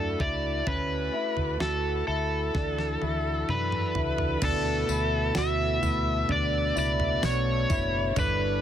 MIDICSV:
0, 0, Header, 1, 6, 480
1, 0, Start_track
1, 0, Key_signature, 2, "major"
1, 0, Tempo, 937500
1, 342, Time_signature, 4, 2, 24, 8
1, 4410, End_track
2, 0, Start_track
2, 0, Title_t, "Electric slide guitar"
2, 0, Program_c, 0, 29
2, 0, Note_on_c, 0, 69, 77
2, 106, Note_on_c, 0, 74, 71
2, 114, Note_off_c, 0, 69, 0
2, 347, Note_on_c, 0, 71, 77
2, 351, Note_off_c, 0, 74, 0
2, 824, Note_off_c, 0, 71, 0
2, 826, Note_on_c, 0, 69, 74
2, 1056, Note_off_c, 0, 69, 0
2, 1062, Note_on_c, 0, 69, 68
2, 1792, Note_on_c, 0, 71, 75
2, 2002, Note_off_c, 0, 69, 0
2, 2276, Note_on_c, 0, 69, 98
2, 2281, Note_off_c, 0, 71, 0
2, 2756, Note_on_c, 0, 76, 102
2, 2763, Note_off_c, 0, 69, 0
2, 3236, Note_on_c, 0, 74, 91
2, 3243, Note_off_c, 0, 76, 0
2, 3469, Note_off_c, 0, 74, 0
2, 3476, Note_on_c, 0, 74, 101
2, 3712, Note_off_c, 0, 74, 0
2, 3714, Note_on_c, 0, 73, 99
2, 4196, Note_on_c, 0, 71, 91
2, 4202, Note_off_c, 0, 73, 0
2, 4410, Note_off_c, 0, 71, 0
2, 4410, End_track
3, 0, Start_track
3, 0, Title_t, "Clean electric guitar"
3, 0, Program_c, 1, 27
3, 0, Note_on_c, 1, 62, 73
3, 102, Note_off_c, 1, 62, 0
3, 103, Note_on_c, 1, 64, 64
3, 341, Note_on_c, 1, 61, 77
3, 342, Note_off_c, 1, 64, 0
3, 581, Note_off_c, 1, 61, 0
3, 581, Note_on_c, 1, 64, 68
3, 816, Note_off_c, 1, 64, 0
3, 818, Note_on_c, 1, 66, 73
3, 1060, Note_off_c, 1, 66, 0
3, 1062, Note_on_c, 1, 64, 64
3, 1302, Note_off_c, 1, 64, 0
3, 1302, Note_on_c, 1, 62, 73
3, 1542, Note_off_c, 1, 62, 0
3, 1544, Note_on_c, 1, 64, 66
3, 1783, Note_off_c, 1, 64, 0
3, 1787, Note_on_c, 1, 62, 67
3, 2024, Note_off_c, 1, 62, 0
3, 2024, Note_on_c, 1, 64, 64
3, 2263, Note_off_c, 1, 64, 0
3, 2264, Note_on_c, 1, 62, 92
3, 2502, Note_on_c, 1, 64, 71
3, 2503, Note_off_c, 1, 62, 0
3, 2741, Note_off_c, 1, 64, 0
3, 2743, Note_on_c, 1, 66, 87
3, 2979, Note_off_c, 1, 66, 0
3, 2981, Note_on_c, 1, 64, 73
3, 3220, Note_on_c, 1, 62, 85
3, 3221, Note_off_c, 1, 64, 0
3, 3460, Note_on_c, 1, 64, 73
3, 3461, Note_off_c, 1, 62, 0
3, 3701, Note_off_c, 1, 64, 0
3, 3702, Note_on_c, 1, 62, 80
3, 3941, Note_on_c, 1, 64, 74
3, 3942, Note_off_c, 1, 62, 0
3, 4182, Note_off_c, 1, 64, 0
3, 4185, Note_on_c, 1, 62, 95
3, 4410, Note_off_c, 1, 62, 0
3, 4410, End_track
4, 0, Start_track
4, 0, Title_t, "Tonewheel organ"
4, 0, Program_c, 2, 16
4, 0, Note_on_c, 2, 57, 59
4, 0, Note_on_c, 2, 62, 63
4, 0, Note_on_c, 2, 64, 59
4, 0, Note_on_c, 2, 66, 74
4, 322, Note_off_c, 2, 57, 0
4, 325, Note_off_c, 2, 62, 0
4, 339, Note_on_c, 2, 57, 63
4, 1291, Note_off_c, 2, 57, 0
4, 1307, Note_on_c, 2, 69, 59
4, 1308, Note_on_c, 2, 52, 53
4, 1310, Note_on_c, 2, 62, 55
4, 2244, Note_off_c, 2, 64, 0
4, 2244, Note_off_c, 2, 66, 0
4, 2255, Note_off_c, 2, 52, 0
4, 2255, Note_off_c, 2, 69, 0
4, 2257, Note_off_c, 2, 62, 0
4, 2259, Note_on_c, 2, 64, 65
4, 2261, Note_on_c, 2, 47, 74
4, 2262, Note_on_c, 2, 57, 61
4, 2262, Note_on_c, 2, 59, 65
4, 2262, Note_on_c, 2, 66, 71
4, 3211, Note_off_c, 2, 64, 0
4, 3222, Note_on_c, 2, 62, 59
4, 4162, Note_off_c, 2, 47, 0
4, 4163, Note_off_c, 2, 57, 0
4, 4163, Note_off_c, 2, 59, 0
4, 4163, Note_off_c, 2, 66, 0
4, 4177, Note_on_c, 2, 71, 73
4, 4179, Note_on_c, 2, 55, 68
4, 4179, Note_on_c, 2, 69, 66
4, 4180, Note_on_c, 2, 64, 68
4, 4410, Note_off_c, 2, 55, 0
4, 4410, Note_off_c, 2, 62, 0
4, 4410, Note_off_c, 2, 64, 0
4, 4410, Note_off_c, 2, 69, 0
4, 4410, Note_off_c, 2, 71, 0
4, 4410, End_track
5, 0, Start_track
5, 0, Title_t, "Fingered electric bass"
5, 0, Program_c, 3, 33
5, 0, Note_on_c, 3, 42, 91
5, 75, Note_off_c, 3, 42, 0
5, 101, Note_on_c, 3, 37, 85
5, 313, Note_off_c, 3, 37, 0
5, 342, Note_on_c, 3, 38, 97
5, 553, Note_off_c, 3, 38, 0
5, 704, Note_on_c, 3, 38, 87
5, 808, Note_off_c, 3, 38, 0
5, 820, Note_on_c, 3, 38, 90
5, 1032, Note_off_c, 3, 38, 0
5, 1063, Note_on_c, 3, 38, 80
5, 1274, Note_off_c, 3, 38, 0
5, 1304, Note_on_c, 3, 38, 91
5, 1514, Note_off_c, 3, 38, 0
5, 1546, Note_on_c, 3, 38, 79
5, 1755, Note_off_c, 3, 38, 0
5, 1784, Note_on_c, 3, 42, 91
5, 1994, Note_off_c, 3, 42, 0
5, 2025, Note_on_c, 3, 37, 81
5, 2235, Note_off_c, 3, 37, 0
5, 2264, Note_on_c, 3, 38, 110
5, 2474, Note_off_c, 3, 38, 0
5, 2502, Note_on_c, 3, 38, 91
5, 2713, Note_off_c, 3, 38, 0
5, 2747, Note_on_c, 3, 38, 93
5, 2956, Note_off_c, 3, 38, 0
5, 2980, Note_on_c, 3, 38, 99
5, 3192, Note_off_c, 3, 38, 0
5, 3221, Note_on_c, 3, 38, 105
5, 3433, Note_off_c, 3, 38, 0
5, 3462, Note_on_c, 3, 37, 77
5, 3673, Note_off_c, 3, 37, 0
5, 3704, Note_on_c, 3, 35, 95
5, 3914, Note_off_c, 3, 35, 0
5, 3943, Note_on_c, 3, 30, 97
5, 4154, Note_off_c, 3, 30, 0
5, 4181, Note_on_c, 3, 31, 111
5, 4393, Note_off_c, 3, 31, 0
5, 4410, End_track
6, 0, Start_track
6, 0, Title_t, "Drums"
6, 102, Note_on_c, 9, 36, 75
6, 102, Note_on_c, 9, 43, 63
6, 153, Note_off_c, 9, 36, 0
6, 153, Note_off_c, 9, 43, 0
6, 342, Note_on_c, 9, 36, 96
6, 342, Note_on_c, 9, 43, 83
6, 393, Note_off_c, 9, 43, 0
6, 394, Note_off_c, 9, 36, 0
6, 700, Note_on_c, 9, 43, 56
6, 751, Note_off_c, 9, 43, 0
6, 821, Note_on_c, 9, 38, 98
6, 872, Note_off_c, 9, 38, 0
6, 1304, Note_on_c, 9, 36, 79
6, 1304, Note_on_c, 9, 38, 46
6, 1355, Note_off_c, 9, 36, 0
6, 1355, Note_off_c, 9, 38, 0
6, 1426, Note_on_c, 9, 38, 48
6, 1477, Note_off_c, 9, 38, 0
6, 1545, Note_on_c, 9, 48, 58
6, 1596, Note_off_c, 9, 48, 0
6, 1786, Note_on_c, 9, 47, 76
6, 1837, Note_off_c, 9, 47, 0
6, 1906, Note_on_c, 9, 45, 61
6, 1958, Note_off_c, 9, 45, 0
6, 2023, Note_on_c, 9, 43, 84
6, 2074, Note_off_c, 9, 43, 0
6, 2142, Note_on_c, 9, 43, 79
6, 2193, Note_off_c, 9, 43, 0
6, 2262, Note_on_c, 9, 43, 102
6, 2262, Note_on_c, 9, 49, 95
6, 2262, Note_on_c, 9, 54, 58
6, 2263, Note_on_c, 9, 36, 117
6, 2313, Note_off_c, 9, 43, 0
6, 2313, Note_off_c, 9, 49, 0
6, 2313, Note_off_c, 9, 54, 0
6, 2314, Note_off_c, 9, 36, 0
6, 2503, Note_on_c, 9, 54, 70
6, 2554, Note_off_c, 9, 54, 0
6, 2738, Note_on_c, 9, 38, 123
6, 2738, Note_on_c, 9, 54, 81
6, 2790, Note_off_c, 9, 38, 0
6, 2790, Note_off_c, 9, 54, 0
6, 2984, Note_on_c, 9, 43, 64
6, 2984, Note_on_c, 9, 54, 60
6, 3036, Note_off_c, 9, 43, 0
6, 3036, Note_off_c, 9, 54, 0
6, 3221, Note_on_c, 9, 43, 68
6, 3272, Note_off_c, 9, 43, 0
6, 3464, Note_on_c, 9, 54, 64
6, 3516, Note_off_c, 9, 54, 0
6, 3583, Note_on_c, 9, 43, 70
6, 3634, Note_off_c, 9, 43, 0
6, 3702, Note_on_c, 9, 38, 125
6, 3702, Note_on_c, 9, 54, 88
6, 3753, Note_off_c, 9, 38, 0
6, 3753, Note_off_c, 9, 54, 0
6, 3942, Note_on_c, 9, 36, 98
6, 3942, Note_on_c, 9, 43, 68
6, 3942, Note_on_c, 9, 54, 68
6, 3993, Note_off_c, 9, 36, 0
6, 3994, Note_off_c, 9, 43, 0
6, 3994, Note_off_c, 9, 54, 0
6, 4180, Note_on_c, 9, 43, 105
6, 4180, Note_on_c, 9, 54, 63
6, 4181, Note_on_c, 9, 36, 115
6, 4231, Note_off_c, 9, 43, 0
6, 4231, Note_off_c, 9, 54, 0
6, 4233, Note_off_c, 9, 36, 0
6, 4410, End_track
0, 0, End_of_file